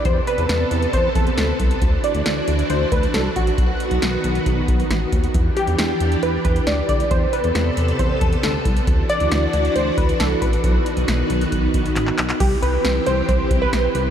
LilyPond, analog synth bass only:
\new Staff \with { instrumentName = "Analog synth bass" } { \clef bass \time 4/4 \key d \mixolydian \tempo 4 = 136 e,8 r16 e,16 e,8 e,8 e,8 e,8 d,8 c,8 | d,8 r16 d,16 d,8 d,8 d,8 d,8 c,8 a,,8 | b,,8 r16 b,,16 b,,8 b,,8 b,,8 b,,8 a,,8 dis,8 | e,8 r16 e,16 e,8 e,8 e,8 e,8 d,8 d,8 |
e,8 r16 e,16 e,8 e,8 e,8 e,8 d,8 c,8 | d,8 r16 d,16 d,8 d,8 d,8 d,8 c,8 a,,8 | b,,8 r16 b,,16 b,,8 b,,8 b,,8 b,,8 a,,8 b,,8 | c,8 c,8 c,8 c,8 c,8 c,8 b,,8 c,8 | }